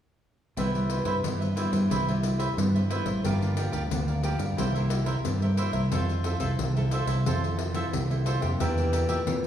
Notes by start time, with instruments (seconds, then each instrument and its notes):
0.57 fingered electric bass C2, nylon-string guitar C3 G3 B3 E4, cavaquinho E4 B4 C5 E5, pandeiro
0.74 nylon-string guitar G3 B3 E4, pandeiro
0.89 cavaquinho E4 B4 C5 E5, pandeiro
1.05 fingered electric bass G2, cavaquinho E4 B4 C5 E5, pandeiro
1.23 nylon-string guitar G2 G3 B3 E4, fingered electric bass G2, pandeiro
1.40 cavaquinho B4 C5 E5, pandeiro
1.56 nylon-string guitar G3 B3 E4, cavaquinho E4 B4 C5 E5, pandeiro
1.72 fingered electric bass G2, cavaquinho B4 C5 E5, pandeiro
1.90 fingered electric bass C2, nylon-string guitar C3, cavaquinho E4 B4 C5 E5, pandeiro
2.07 nylon-string guitar G3 E4, cavaquinho B4 C5 E5, pandeiro
2.23 pandeiro
2.38 cavaquinho E4 B4 C5 E5, pandeiro
2.57 fingered electric bass G2, nylon-string guitar G2 G3 B3 E4, pandeiro
2.75 cavaquinho B4 C5 E5, pandeiro
2.90 nylon-string guitar G3 B3 E4, cavaquinho E4 B4 C5 E5, pandeiro
3.06 fingered electric bass A1, cavaquinho B4 C5 E5, pandeiro
3.23 fingered electric bass G1, nylon-string guitar G2 F3 A#3 D4, cavaquinho G4 A#4 D5 F5, pandeiro
3.40 nylon-string guitar F3 A#3 D4, pandeiro
3.57 cavaquinho G4 A#4 D5 F5, pandeiro
3.72 fingered electric bass D2, cavaquinho G4 A#4 D5 F5, pandeiro
3.91 fingered electric bass D2, nylon-string guitar D3 F3 A#3 D4, pandeiro
4.08 cavaquinho A#4 D5 F5, pandeiro
4.22 nylon-string guitar F3 A#3 D4, cavaquinho G4 A#4 D5 F5, pandeiro
4.39 fingered electric bass G2, cavaquinho A#4 D5 F5, pandeiro
4.57 fingered electric bass C2, nylon-string guitar C3 G3 A#3 E4, cavaquinho E4 A#4 C5 E5, pandeiro
4.75 nylon-string guitar G3 A#3 E4, cavaquinho A#4 C5 E5, pandeiro
4.90 pandeiro
5.06 cavaquinho E4 A#4 C5 E5, pandeiro
5.25 fingered electric bass G2, nylon-string guitar G2 G3 A#3 E4, pandeiro
5.42 cavaquinho A#4 C5 E5, pandeiro
5.57 nylon-string guitar G3 A#3 E4, cavaquinho E4 A#4 C5 E5, pandeiro
5.73 fingered electric bass C2, cavaquinho A#4 C5 E5, pandeiro
5.92 fingered electric bass F2, nylon-string guitar F3 C4 E4 A4, cavaquinho F4 A4 C5 E5, pandeiro
6.09 pandeiro
6.24 cavaquinho F4 A4 C5 E5, pandeiro
6.40 fingered electric bass C2, nylon-string guitar C4 E4 A4, cavaquinho F4 A4 C5 E5, pandeiro
6.59 fingered electric bass C2, nylon-string guitar C3, pandeiro
6.77 nylon-string guitar C4 E4 A4, cavaquinho A4 C5 E5, pandeiro
6.91 cavaquinho F4 A4 C5 E5, pandeiro
7.07 fingered electric bass C2, nylon-string guitar C4 E4 A4, cavaquinho A4 C5 E5, pandeiro
7.26 fingered electric bass F2, nylon-string guitar F3 C4 E4 A4, cavaquinho F4 A4 C5 E5, pandeiro
7.44 cavaquinho A4 C5 E5, pandeiro
7.59 pandeiro
7.74 nylon-string guitar C4 E4 A4, cavaquinho F4 A4 C5 E5, pandeiro
7.93 fingered electric bass C2, nylon-string guitar C3, pandeiro
8.10 nylon-string guitar C4 E4 A4, cavaquinho A4 C5 E5, pandeiro
8.26 cavaquinho F4 A4 C5 E5, pandeiro
8.41 fingered electric bass F2, nylon-string guitar A#3 D4 G4, cavaquinho A4 C5 E5, pandeiro
8.60 fingered electric bass E2, nylon-string guitar E3, cavaquinho G4 A#4 D5 E5, pandeiro
8.78 nylon-string guitar A#3 D4 G4, pandeiro
8.92 cavaquinho G4 A#4 D5 E5, pandeiro
9.08 fingered electric bass A#2, cavaquinho G4 A#4 D5 E5, pandeiro
9.26 fingered electric bass A#2, nylon-string guitar E3 A#3 D4 G4, pandeiro